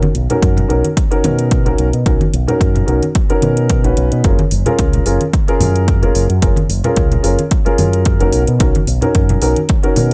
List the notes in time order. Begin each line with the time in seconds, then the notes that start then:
0.02 closed hi-hat, high conga
0.15 B1, closed hi-hat
0.30 C#4 D#4 F#4 A#4, muted fingered electric bass stroke, closed hi-hat, low conga
0.42 F#2, kick, closed hi-hat
0.57 closed hi-hat, low conga
0.68 B1 C#4 D#4 F#4 A#4, closed hi-hat
0.84 closed hi-hat, high conga
0.97 kick, closed hi-hat
1.11 C#4 D#4 F#4 A#4, closed hi-hat
1.24 B2, closed hi-hat, high conga, low conga
1.39 closed hi-hat
1.51 kick, closed hi-hat
1.65 B1 C#4 D#4 F#4 A#4, closed hi-hat
1.78 B1, closed hi-hat
1.93 B2, closed hi-hat
2.06 B1 C#4 D#4 F#4 A#4, kick, closed hi-hat
2.21 closed hi-hat, high conga
2.34 B1, closed hi-hat
2.47 C#4 D#4 F#4 A#4, muted fingered electric bass stroke, closed hi-hat, low conga
2.61 F#2, kick, closed hi-hat
2.75 closed hi-hat, low conga
2.86 B1 C#4 D#4 F#4 A#4, closed hi-hat
3.03 closed hi-hat, high conga
3.15 kick, closed hi-hat
3.29 C#4 D#4 F#4 A#4, muted fingered electric bass stroke, closed hi-hat
3.42 B2, closed hi-hat, high conga
3.57 closed hi-hat
3.70 kick, closed hi-hat
3.83 B1 C#4 D#4 F#4 B4, closed hi-hat
3.97 B1, closed hi-hat
4.12 B2, closed hi-hat
4.24 F#1 C#4 F4 G#4 A#4, kick, closed hi-hat
4.39 closed hi-hat, high conga
4.51 F#1, open hi-hat
4.66 C#4 F4 G#4 A#4, closed hi-hat, low conga
4.79 C#2, kick, closed hi-hat
4.93 closed hi-hat, low conga
5.06 F#1 C#4 F4 G#4 A#4, open hi-hat
5.21 closed hi-hat, high conga
5.34 kick, closed hi-hat
5.48 C#4 F4 G#4 A#4, closed hi-hat
5.60 F#2, open hi-hat, high conga, low conga
5.76 closed hi-hat
5.88 kick, closed hi-hat
6.02 F#1 C#4 F4 G#4 A#4, closed hi-hat
6.15 F#1, open hi-hat
6.29 F#2, closed hi-hat
6.42 F#1 C#4 F4 G#4 A#4, kick, closed hi-hat
6.56 closed hi-hat, high conga
6.69 F#1, open hi-hat
6.84 C#4 F4 G#4 A#4, muted fingered electric bass stroke, closed hi-hat, low conga
6.97 C#2, kick, closed hi-hat
7.12 closed hi-hat, low conga
7.23 F#1 C#4 F4 G#4 A#4, open hi-hat
7.39 closed hi-hat, high conga
7.51 kick, closed hi-hat
7.65 C#4 F4 G#4 A#4, muted fingered electric bass stroke, closed hi-hat
7.78 F#2, open hi-hat, high conga
7.93 closed hi-hat
8.05 kick, closed hi-hat
8.20 F#1 C#4 D#4 F#4 A#4, closed hi-hat
8.32 B1, open hi-hat
8.47 B2, closed hi-hat
8.59 B1 C#4 D#4 F#4 A#4, kick, closed hi-hat
8.75 closed hi-hat, high conga
8.87 B1, open hi-hat
9.01 C#4 D#4 F#4 A#4, closed hi-hat, low conga
9.15 F#2, kick, closed hi-hat
9.29 closed hi-hat, low conga
9.41 B1 C#4 D#4 F#4 A#4, open hi-hat
9.56 closed hi-hat, high conga
9.69 kick, closed hi-hat
9.83 C#4 D#4 F#4 A#4, closed hi-hat
9.96 B2, open hi-hat, high conga, low conga